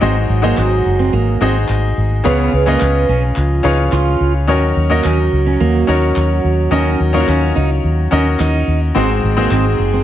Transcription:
0.01 G#1 G#2 F#3 C4 D#4 F#4 G#4 C5 D#5
0.29 G#1
0.42 A#3 D#4 F#4 G#4 C5 D#5
0.57 G#1 C4, clap
0.86 F#1
0.99 C4
1.13 G#1 A#3
1.41 G#1 C4 D#4 F#4 G#4 C5 D#5
1.69 G#1, clap
1.97 G#1
2.24 C#2 C#3 G#3 B3 C#4 F4 G#4 B4 C#5
2.53 C#2
2.66 A#3 C#4 F4 G#4 B4 D#5
2.80 C#2 B3, clap
3.09 B1 C#4
3.36 C#2 F3 F4, clap
3.63 C#2 C#4 D#4 F4 G#4 B4 C#5
3.92 C#2 F4, clap
4.20 C#2
4.47 D#2 D#3 F#3 C#4 D#4 F#4 A#4 C#5
4.76 D#2
4.90 A#3 C#4 D#4 F#4 A#4 D#5
5.04 D#2 C#4, clap
5.32 C#2
5.46 C#4
5.60 D#2 A#3
5.87 D#2 C#4 D#4 F#4 A#4 C#5
6.16 D#2, clap
6.44 D#2
6.71 D#2 D#3 C#4 D#4 F#4 A#4 D#5
7.00 D#2
7.13 A#3 C#4 D#4 F4 A#4 C#5
7.20 F#4
7.28 D#2 C#4, clap
7.56 C#2 D#4
7.84 D#2
8.11 D#2 C#4 D#4 F#4 A#4 D#5
8.40 D#2 D#4, clap
8.67 D#2
8.95 G#1 G#2 G#3 C4 D#4 F#4 G#4 C5
9.24 G#1
9.37 A#3 C4 D#4 F#4 G#4 C5
9.51 G#1 C4, clap
9.79 F#1
9.93 C4

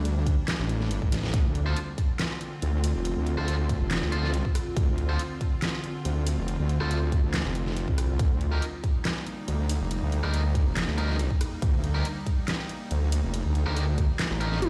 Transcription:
Already playing: D2 G3 A#3 D4
0.05 closed hi-hat
0.27 kick, closed hi-hat
0.48 snare, clap, closed hi-hat
0.59 A1
0.69 closed hi-hat
0.81 snare
0.91 closed hi-hat
1.02 A1, kick
1.12 snare, open hi-hat
1.23 snare
1.34 D2 D3 C4 F4, kick, closed hi-hat
1.55 closed hi-hat
1.66 F4 A4 C5
1.77 closed hi-hat
1.98 kick, closed hi-hat
2.19 snare, clap, closed hi-hat
2.41 closed hi-hat
2.62 D2, closed hi-hat
2.84 open hi-hat
2.95 F1
3.05 closed hi-hat
3.16 D2
3.27 closed hi-hat
3.37 D2 F4 A4 C5, cross-stick
3.48 closed hi-hat
3.69 kick, closed hi-hat
3.81 F1
3.91 snare, clap, closed hi-hat
4.02 D2
4.12 F4 A4 C5, closed hi-hat
4.23 snare
4.34 closed hi-hat
4.45 kick
4.55 cross-stick, open hi-hat
4.77 D2, kick, closed hi-hat
4.98 closed hi-hat
5.09 F4 A4 C5
5.19 closed hi-hat
5.41 kick, closed hi-hat
5.62 snare, clap, closed hi-hat
5.84 closed hi-hat
6.05 D2, closed hi-hat
6.27 open hi-hat
6.38 F1
6.48 closed hi-hat
6.59 D2
6.69 closed hi-hat
6.80 D2 F4 A4 C5, cross-stick
6.91 closed hi-hat
7.12 kick, closed hi-hat
7.23 D2
7.34 snare, clap, closed hi-hat
7.45 F1
7.55 closed hi-hat
7.66 snare
7.77 closed hi-hat
7.88 C2, kick
7.98 cross-stick, open hi-hat
8.19 D2 G3 A#3 D#4, kick, closed hi-hat
8.41 closed hi-hat
8.52 D#4 G4 A#4
8.62 closed hi-hat
8.84 kick, closed hi-hat
9.05 snare, clap, closed hi-hat
9.27 closed hi-hat
9.48 D2, closed hi-hat
9.69 open hi-hat
9.81 F1
9.91 closed hi-hat
10.02 D2
10.12 closed hi-hat
10.23 D2 D#4 G4 A#4, cross-stick
10.34 closed hi-hat
10.55 kick, closed hi-hat
10.66 F1
10.77 snare, clap, closed hi-hat
10.88 D2
10.98 D#4 G4 A#4, closed hi-hat
11.09 snare
11.19 closed hi-hat
11.31 kick
11.41 cross-stick, open hi-hat
11.62 D2, kick, closed hi-hat
11.84 closed hi-hat
11.95 D#4 G4 A#4
12.05 closed hi-hat
12.27 kick, closed hi-hat
12.48 snare, clap, closed hi-hat
12.69 closed hi-hat
12.91 D2, closed hi-hat
13.12 open hi-hat
13.23 F1
13.34 closed hi-hat
13.45 D2
13.55 closed hi-hat
13.66 D2 D#4 G4 A#4, cross-stick
13.77 closed hi-hat
13.98 kick, closed hi-hat
14.19 snare, clap, closed hi-hat
14.31 A1
14.40 D#4 G4 A#4, closed hi-hat
14.52 snare
14.62 closed hi-hat, high tom

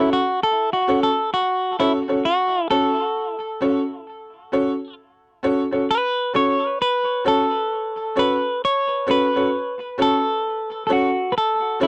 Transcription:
Already playing: C#4 E4 F#4
0.00 A4 C#5
0.13 F#4
0.43 A4
0.73 F#4
0.88 C#4 F#4 A4 C#5
1.03 A4
1.34 F#4
1.79 C#4 E4 F#4 A4 C#5
2.08 C#4 F#4 A4 C#5
2.25 F#4
2.70 C#4 F#4 A4 C#5
3.61 C#4 F#4 A4 C#5
4.52 C#4 F#4 A4 C#5
5.43 C#4 F#4 A4 C#5
5.71 C#4 F#4 A4 C#5
5.91 B4
6.34 C#4 F#4 A4 C#5
6.82 B4
7.25 C#4 F#4 A4 C#5
8.16 C#4 F#4 A4 B4 C#5
8.65 C#5
9.07 C#4 F#4 A4 C#5
9.11 B4
9.35 C#4 F#4 A4 C#5
9.98 C#4 F#4 A4 C#5
10.02 A4
10.87 C#4 F#4 A4 C#5
10.92 F#4
11.32 B4
11.38 A4
11.80 C#4 E4 F#4 A4 C#5

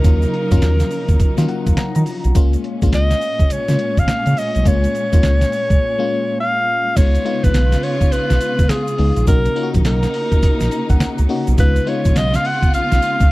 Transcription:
Already playing: C#3 F#3 A#3 C#4 D#4 E4 F4 A#4
0.04 D#2 F#3 A#3 C#4 F4, kick, closed hi-hat, shaker
0.22 closed hi-hat, shaker
0.34 closed hi-hat
0.51 F#2 F3 A#3 C#4 F4, kick, closed hi-hat, shaker
0.57 F#3
0.62 D#2, snare, closed hi-hat, shaker
0.80 snare, closed hi-hat, shaker
0.91 open hi-hat, shaker
1.08 D#2, kick, closed hi-hat, shaker
1.20 D#3, kick, closed hi-hat, shaker
1.37 D#3 F#3 A#3 C#4 F4, snare, closed hi-hat, shaker
1.48 F#5, closed hi-hat
1.66 D#2, kick, closed hi-hat, shaker
1.77 A#5, snare, closed hi-hat, shaker
1.95 D#3 A#5, closed hi-hat, shaker
2.06 open hi-hat, shaker
2.24 B1, closed hi-hat, shaker
2.35 C#2 A#2 G#3 A#3 C#4 F4, kick, closed hi-hat, shaker
2.53 closed hi-hat, shaker
2.64 closed hi-hat
2.82 A#1 G#3 A#3 C#4 F4, kick, closed hi-hat, shaker
2.92 C#2 D#5, snare, closed hi-hat, shaker
3.10 snare, closed hi-hat, shaker
3.21 open hi-hat, shaker
3.39 C#2, kick, closed hi-hat, shaker
3.50 C#3 C#5, closed hi-hat, shaker
3.68 C#3 G#3 A#3 C#4 F4, snare, closed hi-hat, shaker
3.79 closed hi-hat
3.97 C#2 F5, kick, closed hi-hat, shaker
4.08 snare, closed hi-hat, shaker
4.26 C#3, closed hi-hat, shaker
4.37 D#5, open hi-hat, shaker
4.55 B1, closed hi-hat, shaker
4.65 C#2 G#3 A#3 C#4 F4 C#5, kick, closed hi-hat, shaker
4.84 closed hi-hat, shaker
4.95 closed hi-hat, shaker
5.12 D#2 G#3 A#3 C#4 F4, kick, closed hi-hat, shaker
5.23 C#2, snare, closed hi-hat, shaker
5.41 snare, closed hi-hat, shaker
5.52 open hi-hat, shaker
5.70 C#2, kick, closed hi-hat, shaker
5.98 G#3 A#3 C#4 F4
6.40 F5
6.96 C#2 C#3 G#3 B3 D#4 F4 C#5, kick, closed hi-hat, crash, tambourine, shaker
7.15 closed hi-hat, shaker
7.25 G#3 B3 D#4 F4, closed hi-hat, tambourine
7.44 A#1 B4, kick, closed hi-hat, shaker
7.54 B1, snare, closed hi-hat, tambourine, shaker
7.72 snare, closed hi-hat, shaker
7.83 C#5, open hi-hat, tambourine
8.01 kick, closed hi-hat, shaker
8.12 B1 B4, closed hi-hat, tambourine, shaker
8.30 B1, snare, closed hi-hat, shaker
8.41 closed hi-hat, tambourine, shaker
8.59 C#2, kick, closed hi-hat, shaker
8.69 G#4, snare, closed hi-hat, tambourine, shaker
8.88 closed hi-hat, shaker
8.98 C#2 G#3 B3 D#4 G#4, open hi-hat
9.16 A#1, closed hi-hat, shaker
9.27 B1 C#3 A#3 C#4 D#4 F#4 A#4, kick, closed hi-hat, tambourine, shaker
9.45 closed hi-hat, shaker
9.56 A#3 C#4 D#4 F4, closed hi-hat, tambourine
9.63 F#4
9.74 A#1, kick, closed hi-hat, shaker
9.85 B1 A#4, snare, closed hi-hat, tambourine, shaker
10.03 snare, closed hi-hat, shaker
10.14 open hi-hat, tambourine
10.32 kick, closed hi-hat, shaker
10.43 A#1, kick, closed hi-hat, tambourine, shaker
10.60 A#1, snare, closed hi-hat, shaker
10.71 A#5, closed hi-hat, tambourine, shaker
10.89 B1 F#5, kick, closed hi-hat, shaker
11.00 C#2 F#5, snare, closed hi-hat, tambourine, shaker
11.18 C#2, closed hi-hat, shaker
11.29 A#3 C#4 D#4 F#4, open hi-hat
11.47 B1, closed hi-hat, shaker
11.58 C#2 G#3 B3 D#4 F4 B4, kick, closed hi-hat, tambourine, shaker
11.76 closed hi-hat, shaker
11.86 G#3 B3 D#4 F4 C#5, closed hi-hat, tambourine
12.05 A#1, kick, closed hi-hat, shaker
12.16 B1 D#5, snare, closed hi-hat, tambourine, shaker
12.34 F5, snare, closed hi-hat, shaker
12.45 F#5, open hi-hat, tambourine
12.62 kick, closed hi-hat, shaker
12.74 B1 F5, closed hi-hat, tambourine, shaker
12.92 B1, snare, closed hi-hat, shaker
13.02 closed hi-hat, tambourine, shaker
13.20 C#2, kick, closed hi-hat, shaker

